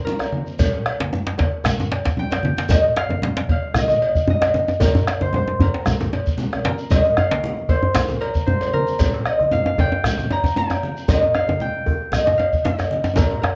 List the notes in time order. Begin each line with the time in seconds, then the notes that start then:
Already playing: C5
0.04 A#4, low conga
0.19 bombo rim, cowbell, djembe tone, shekere
0.32 bombo rim, high conga
0.46 shekere
0.59 bombo low, cowbell, djembe tone, djembe bass, low conga, shekere
0.73 djembe slap
0.85 bombo rim, cowbell
0.99 djembe slap, djembe tone, high conga
1.12 bombo rim, djembe tone, high conga, low conga
1.26 djembe slap
1.38 bombo low, cowbell, djembe slap, djembe tone
1.52 djembe slap, high conga
1.64 bombo rim, djembe slap, djembe bass, low conga, shekere
1.66 djembe slap
1.78 djembe slap, djembe tone, high conga, shekere
1.80 bombo rim, djembe tone
1.91 cowbell, djembe slap
2.05 bombo low, djembe slap, shekere
2.17 G5, low conga
2.31 bombo rim, cowbell, djembe slap, djembe tone, shekere
2.43 bombo rim, high conga, djembe tone
2.57 djembe slap, shekere
2.69 D#5, bombo low, cowbell, djembe slap, djembe tone, djembe bass, low conga, shekere
2.83 djembe slap
2.96 F5, bombo rim, cowbell, djembe slap
3.09 bombo rim, djembe slap, high conga, djembe tone
3.22 bombo rim, djembe slap, high conga, low conga
3.36 djembe slap, high conga
3.49 F5, bombo low, cowbell
3.63 djembe slap, high conga
3.74 bombo rim, djembe slap, djembe bass, low conga, shekere
3.78 D#5
3.88 bombo rim, djembe slap, djembe tone, high conga, shekere
4.02 cowbell
4.16 bombo low, shekere
4.28 D#5, djembe bass, low conga
4.41 bombo rim, cowbell, djembe slap, djembe tone, shekere
4.54 bombo rim, djembe tone, high conga
4.68 djembe tone, shekere
4.80 A#4, bombo low, cowbell, djembe tone, high conga, djembe bass, low conga, shekere
4.94 djembe slap, djembe bass, shekere
5.07 bombo rim, cowbell, djembe slap, shekere
5.20 C5, djembe tone, high conga
5.33 C5, djembe tone, low conga
5.48 djembe tone
5.60 A#4, bombo rim, bombo low, cowbell, djembe tone, djembe bass, shekere
5.73 djembe slap, high conga
5.86 bombo rim, djembe slap, djembe tone, low conga, djembe bass, shekere
6.00 bombo rim, djembe slap, high conga, djembe tone, shekere
6.13 cowbell, djembe slap, djembe tone
6.26 bombo low, djembe slap, shekere
6.38 high conga, low conga, shekere
6.53 bombo rim, cowbell, djembe tone
6.64 A#4, djembe slap, high conga
6.78 djembe slap, shekere
6.91 D#5, bombo low, cowbell, djembe tone, low conga, djembe bass, shekere
7.05 djembe slap
7.17 F5, bombo rim, cowbell, djembe bass
7.31 bombo rim, djembe slap, high conga, djembe tone
7.43 bombo rim, high conga, low conga
7.57 high conga
7.69 C5, bombo low, cowbell, djembe tone
7.83 djembe slap, high conga, djembe bass
7.95 bombo rim, djembe slap, djembe bass, low conga, shekere
8.09 bombo rim, djembe slap, djembe tone, high conga, shekere
8.21 A#4, cowbell
8.35 bombo low, shekere
8.47 C5, djembe bass, low conga
8.61 cowbell, djembe tone, shekere
8.73 A#4, bombo rim, high conga
8.87 shekere
8.99 bombo low, cowbell, djembe tone, djembe bass, low conga, shekere
9.14 djembe slap
9.25 D#5, bombo rim, cowbell
9.39 bombo rim, djembe slap, djembe tone, high conga
9.51 F5, bombo rim, djembe tone, high conga, low conga
9.66 F5, djembe tone, high conga
9.78 G5, bombo low, cowbell, djembe tone
9.92 djembe slap, djembe tone, high conga
10.03 bombo rim, djembe slap, djembe bass, low conga, shekere
10.17 bombo rim, djembe slap, djembe tone, high conga, shekere
10.30 A#5, cowbell, djembe tone
10.43 bombo low, djembe tone, shekere
10.56 G5, djembe tone, low conga
10.70 bombo rim, cowbell, djembe tone, shekere
10.83 bombo rim, high conga
10.97 shekere
11.08 D#5, bombo low, cowbell, djembe tone, djembe bass, low conga, shekere
11.22 djembe slap, djembe tone
11.34 F5, bombo rim, cowbell, djembe tone
11.48 bombo rim, djembe slap, djembe tone, high conga
11.60 G5, bombo rim, high conga, low conga
11.75 high conga
11.86 bombo low, djembe tone
12.00 djembe slap, high conga
12.12 D#5, bombo rim, djembe slap, low conga, djembe bass, shekere
12.26 bombo rim, djembe slap, djembe tone, high conga, shekere
12.37 F5, cowbell, djembe tone
12.52 bombo low, shekere
12.64 D#5, djembe tone, low conga
12.78 bombo rim, cowbell, djembe tone, shekere
12.91 bombo rim, high conga
13.04 djembe tone, shekere
13.15 A#4, cowbell, djembe slap, djembe tone, high conga, low conga, shekere
13.17 bombo low, djembe tone, djembe bass
13.31 bombo rim, djembe slap
13.42 A#4, bombo rim, cowbell, djembe slap, djembe tone